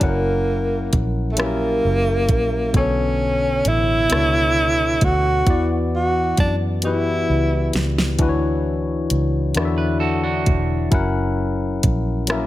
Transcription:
0.00 0.89 F#1 medium
0.00 1.29 F#3 medium
0.00 1.30 C#4 medium
0.00 1.30 E4 medium
0.00 1.31 A#4 medium
0.00 1.31 F#5 medium
0.00 kick medium
0.00 closed hi-hat medium
0.04 1.05 A#3 medium
0.93 1.80 A#1 medium
0.93 kick medium
0.93 closed hi-hat medium
1.32 1.42 A3 medium
1.37 2.66 F#3 medium
1.37 2.76 A#3 medium
1.37 2.66 C#4 medium
1.37 2.67 E4 medium
1.37 1.45 G4 soft
1.37 2.68 E5 medium
1.37 cross-stick loud
1.37 closed hi-hat medium
1.46 2.71 A#4 medium
1.85 2.30 F#1 medium
2.29 2.71 A#1 medium
2.29 kick medium
2.29 closed hi-hat medium
2.73 3.62 B1 medium
2.73 4.02 B2 medium
2.73 4.03 D3 medium
2.73 4.03 B3 medium
2.73 3.70 C#4 medium
2.73 4.04 A4 medium
2.73 4.04 C#5 medium
2.73 kick medium
2.73 closed hi-hat medium
3.65 4.07 A1 medium
3.65 5.06 E4 loud
3.65 closed hi-hat medium
4.10 4.98 C#2 medium
4.10 5.39 B2 medium
4.10 5.39 B3 medium
4.10 5.40 D4 medium
4.10 5.40 A4 medium
4.10 cross-stick medium
4.10 closed hi-hat medium
4.14 5.41 C#5 medium
5.01 5.44 D2 medium
5.01 5.67 F#4 loud
5.01 kick medium
5.01 closed hi-hat medium
5.46 6.34 E2 medium
5.46 6.75 E3 medium
5.46 6.76 B3 medium
5.46 6.77 E4 medium
5.46 6.76 F#4 medium
5.46 6.77 D5 medium
5.46 kick loud
5.46 closed hi-hat medium
5.95 6.36 F#4 medium
6.37 7.25 F#2 medium
6.37 6.56 D4 medium
6.37 kick medium
6.37 closed hi-hat medium
6.82 8.12 E3 medium
6.82 8.12 B3 medium
6.82 7.82 E4 medium
6.82 8.13 F#4 medium
6.82 8.13 G4 medium
6.82 closed hi-hat medium
6.87 8.14 B4 medium
7.30 7.71 C#2 medium
7.73 8.16 C#2 medium
7.73 snare medium
7.73 closed hi-hat medium
7.98 snare medium
8.19 9.07 D2 medium
8.19 9.48 E3 medium
8.19 9.48 D4 medium
8.19 9.49 E4 medium
8.19 9.49 F#4 medium
8.19 8.28 B4 medium
8.19 kick medium
8.19 closed hi-hat medium
8.29 9.53 C#5 medium
9.10 9.52 C#2 medium
9.10 closed hi-hat medium
9.55 10.43 E2 medium
9.55 10.84 D3 medium
9.55 10.85 D4 medium
9.55 10.85 E4 medium
9.55 10.86 F#4 medium
9.55 cross-stick medium
9.55 closed hi-hat medium
9.59 9.64 D5 medium
9.65 10.89 E5 medium
9.78 10.00 B4 medium
10.00 10.22 F#4 medium
10.00 10.22 A4 medium
10.24 10.89 D4 medium
10.24 10.89 F#4 medium
10.46 10.89 E1 medium
10.46 kick medium
10.46 closed hi-hat medium
10.91 11.79 F#1 medium
10.91 12.20 F#3 medium
10.91 12.21 C#4 medium
10.91 12.21 E4 medium
10.91 12.22 A#4 medium
10.91 12.22 F#5 medium
10.91 kick loud
10.91 closed hi-hat medium
11.83 12.47 A#1 medium
11.83 kick medium
11.83 closed hi-hat medium
12.27 12.47 F#3 medium
12.27 12.47 A#3 medium
12.27 12.47 C#4 medium
12.27 12.47 E4 medium
12.27 12.47 A#4 medium
12.27 cross-stick medium
12.27 closed hi-hat medium
12.32 12.47 E5 medium

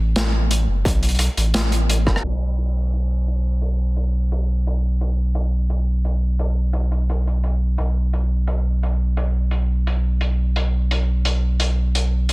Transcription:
0.00 0.67 A1 medium
0.16 snare loud
0.16 closed hi-hat medium
0.51 closed hi-hat medium
0.68 0.84 F#1 medium
0.85 1.28 B1 medium
0.85 kick loud
0.85 closed hi-hat medium
1.03 closed hi-hat soft
1.09 closed hi-hat soft
1.15 closed hi-hat soft
1.19 closed hi-hat medium
1.37 2.08 A1 medium
1.37 closed hi-hat medium
1.54 snare loud
1.54 closed hi-hat medium
1.72 closed hi-hat soft
1.90 closed hi-hat medium
2.07 2.23 F#1 loud
2.07 kick medium
2.07 cross-stick medium
2.16 cross-stick medium
2.24 7.77 B1 medium
2.24 closed hi-hat medium
2.24 crash medium
2.58 closed hi-hat medium
2.93 closed hi-hat medium
3.28 closed hi-hat medium
3.62 closed hi-hat medium
3.97 closed hi-hat medium
4.32 closed hi-hat medium
4.67 closed hi-hat medium
5.01 closed hi-hat medium
5.35 closed hi-hat medium
5.70 closed hi-hat medium
6.05 closed hi-hat medium
6.39 closed hi-hat medium
6.73 closed hi-hat medium
6.92 closed hi-hat soft
7.10 closed hi-hat medium
7.27 closed hi-hat soft
7.44 closed hi-hat medium
7.78 12.33 B1 medium
7.78 closed hi-hat medium
8.13 closed hi-hat medium
8.48 closed hi-hat medium
8.83 closed hi-hat medium
9.17 closed hi-hat medium
9.51 closed hi-hat medium
9.87 closed hi-hat medium
10.21 closed hi-hat medium
10.56 closed hi-hat medium
10.91 closed hi-hat medium
11.25 closed hi-hat medium
11.60 closed hi-hat medium
11.95 closed hi-hat medium
12.29 closed hi-hat medium

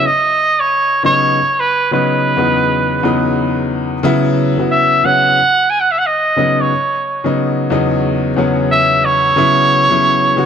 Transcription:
0.06 0.61 D#5 loud
0.60 1.05 C#5 loud
1.03 1.37 C#3 medium
1.03 1.37 F#3 medium
1.03 1.37 B3 medium
1.03 1.37 D#4 medium
1.03 1.61 C#5 loud
1.60 1.92 B4 loud
1.91 2.31 C#3 medium
1.91 2.32 F#3 medium
1.91 2.32 B3 medium
1.91 2.32 D#4 medium
1.91 3.67 B4 loud
2.37 2.96 E2 medium
2.37 2.96 C#3 medium
2.37 2.97 F#3 medium
2.37 2.97 B3 medium
2.37 2.97 D#4 medium
3.03 3.92 E2 medium
3.03 3.92 C#3 medium
3.03 3.93 F#3 medium
3.03 3.93 B3 medium
3.03 3.93 D#4 loud
4.03 4.48 C#3 loud
4.03 4.49 F#3 loud
4.03 4.49 B3 loud
4.03 4.49 E4 loud
4.58 4.98 C#3 medium
4.58 4.98 F#3 medium
4.58 4.99 B3 medium
4.58 4.99 F#4 medium
4.71 5.07 E5 loud
5.04 5.37 C#3 medium
5.04 5.37 F#3 medium
5.04 5.38 B3 medium
5.04 5.38 C#4 medium
5.04 5.71 F#5 loud
5.70 5.82 G#5 loud
5.80 5.93 F#5 medium
5.91 6.00 E5 loud
5.99 6.08 F#5 medium
6.06 6.62 D#5 loud
6.36 6.70 C#3 medium
6.36 6.70 F#3 medium
6.36 6.71 B3 medium
6.36 6.71 D#4 medium
6.61 7.26 C#5 medium
7.24 7.65 C#3 medium
7.24 7.65 F#3 medium
7.24 7.65 B3 medium
7.24 7.65 D#4 medium
7.70 8.30 E2 loud
7.70 8.30 C#3 medium
7.70 8.30 F#3 medium
7.70 8.30 B3 medium
7.70 8.30 D#4 loud
8.36 9.26 E2 medium
8.36 9.26 C#3 medium
8.36 9.26 F#3 medium
8.36 9.26 B3 medium
8.36 9.27 C#4 loud
8.72 9.06 E5 loud
9.05 10.46 C#5 loud
9.36 9.81 C#3 loud
9.36 9.82 F#3 medium
9.36 9.82 B3 medium
9.36 9.82 E4 loud
9.90 10.31 C#3 medium
9.90 10.31 F#3 medium
9.90 10.31 B3 medium
9.90 10.32 E4 medium
10.36 10.46 C#3 medium
10.36 10.46 F#3 medium
10.36 10.46 B3 medium
10.36 10.46 F#4 loud

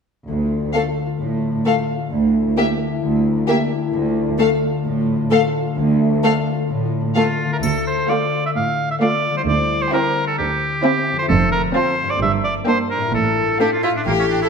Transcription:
0.27 0.66 D2 soft
0.27 2.11 D3 soft
0.44 0.74 F4 soft
0.59 0.89 D4 soft
0.73 0.82 A3 soft
0.73 1.05 F4 soft
0.73 0.82 A4 soft
0.73 0.81 F5 soft
0.91 1.20 D4 soft
1.06 1.35 F4 soft
1.20 1.58 A2 soft
1.20 1.50 D4 soft
1.37 1.65 F4 soft
1.51 1.80 D4 soft
1.65 1.73 A3 soft
1.65 1.95 F4 soft
1.65 1.74 A4 soft
1.65 1.74 F5 soft
1.81 2.41 D4 soft
1.97 2.14 F4 soft
2.12 2.50 D2 soft
2.12 3.01 D3 soft
2.27 2.56 E4 soft
2.42 2.71 D4 soft
2.57 2.65 A#3 soft
2.57 2.86 E4 soft
2.57 2.65 G4 soft
2.57 2.66 E5 soft
2.72 3.31 D4 soft
2.87 3.46 E4 soft
3.02 3.41 D2 soft
3.02 3.92 D3 soft
3.17 3.95 A#3 soft
3.32 3.62 D4 soft
3.47 3.57 A#3 soft
3.47 3.76 E4 soft
3.47 3.56 G4 soft
3.47 3.57 E5 soft
3.63 4.23 D4 soft
3.78 3.95 E4 soft
3.93 4.31 D2 medium
3.93 5.77 D3 soft
4.08 4.38 F4 soft
4.24 4.53 D4 soft
4.38 4.46 A3 soft
4.38 4.69 F4 soft
4.38 4.47 A4 soft
4.38 4.48 F5 soft
4.54 4.84 D4 soft
4.70 4.99 F4 soft
4.85 5.23 A2 medium
4.85 5.15 D4 soft
5.00 5.30 F4 soft
5.16 5.46 D4 soft
5.30 5.38 A3 soft
5.30 5.60 F4 soft
5.30 5.39 A4 soft
5.30 5.40 F5 soft
5.47 6.08 D4 soft
5.62 6.23 F4 soft
5.78 6.16 D2 medium
5.78 7.44 D3 medium
5.93 7.48 A3 soft
6.09 6.38 D4 soft
6.23 6.31 A3 soft
6.23 6.53 F4 soft
6.23 6.32 A4 soft
6.23 6.32 F5 soft
6.39 6.69 D4 soft
6.54 6.84 F4 soft
6.70 7.08 A2 soft
6.70 7.00 D4 soft
6.85 7.15 F4 soft
7.01 7.31 D4 soft
7.15 7.25 A3 soft
7.15 7.47 F4 soft
7.15 7.49 F4 medium
7.15 7.24 A4 soft
7.15 7.23 F5 soft
7.32 9.50 D4 soft
7.45 9.29 D3 soft
7.45 7.53 F4 soft
7.50 9.43 A3 soft
7.50 7.57 A#4 soft
7.54 9.45 F4 soft
7.59 9.47 A4 soft
7.63 8.00 D2 soft
7.63 8.00 D2 medium
7.63 7.86 A4 medium
7.63 triangle soft
7.87 8.11 C5 medium
8.09 8.44 A3 soft
8.09 8.44 F4 soft
8.09 8.44 D5 medium
8.09 8.43 F5 soft
8.46 8.51 E5 medium
8.56 8.92 A2 soft
8.56 8.90 F5 medium
8.91 8.96 E5 soft
9.01 9.36 A3 soft
9.01 9.36 F4 soft
9.01 9.35 D5 medium
9.01 9.36 F5 soft
9.30 11.23 D3 soft
9.35 11.25 G3 soft
9.35 9.42 C5 medium
9.39 11.28 E4 soft
9.43 11.25 C5 soft
9.48 9.84 D2 medium
9.48 9.84 D5 medium
9.82 9.93 C5 medium
9.93 10.28 C4 soft
9.93 10.27 E4 soft
9.93 10.27 A#4 medium
9.93 10.27 G5 medium
10.27 10.38 A4 medium
10.38 10.75 D2 medium
10.38 10.83 G4 medium
10.83 11.18 C4 medium
10.83 11.18 E4 medium
10.83 11.18 G4 medium
10.83 11.19 G5 medium
11.12 12.14 F2 soft
11.17 12.17 A3 soft
11.17 11.24 C5 medium
11.21 12.19 F4 soft
11.26 11.66 F2 medium
11.26 11.51 A4 medium
11.26 12.21 C5 soft
11.30 11.66 F1 medium
11.52 11.62 A#4 medium
11.75 12.09 C4 soft
11.75 12.09 F4 medium
11.75 12.12 C5 medium
11.75 12.10 A5 medium
12.03 13.07 G2 soft
12.07 13.09 A#3 soft
12.07 12.21 D5 medium
12.12 12.99 D4 soft
12.17 12.57 G1 medium
12.17 13.14 A#4 soft
12.21 12.58 G2 medium
12.21 12.32 E5 medium
12.44 12.55 D5 medium
12.66 13.02 A#3 soft
12.66 13.02 D4 soft
12.66 12.78 C5 medium
12.66 13.01 G5 soft
12.91 13.14 A#4 medium
12.96 13.88 A2 soft
13.00 14.03 D4 soft
13.05 14.05 F4 soft
13.09 13.51 A1 medium
13.09 14.02 A4 soft
13.14 13.51 A2 medium
13.14 13.60 A4 medium
13.59 13.95 A3 soft
13.59 13.69 D4 soft
13.59 13.72 G4 medium
13.59 13.95 F5 soft
13.73 13.83 F4 medium
13.83 13.89 E4 medium
13.83 13.92 F4 soft
13.89 14.49 A2 soft
13.94 14.49 C#4 soft
13.94 14.02 D4 medium
13.98 14.49 E4 soft
14.03 14.44 A1 soft
14.03 14.44 A2 soft
14.03 14.41 G4 soft
14.03 14.49 A4 soft
14.07 14.12 A#3 soft
14.19 14.24 C#4 medium
14.30 14.42 D4 soft
14.42 14.47 E4 soft
14.42 14.48 A4 soft

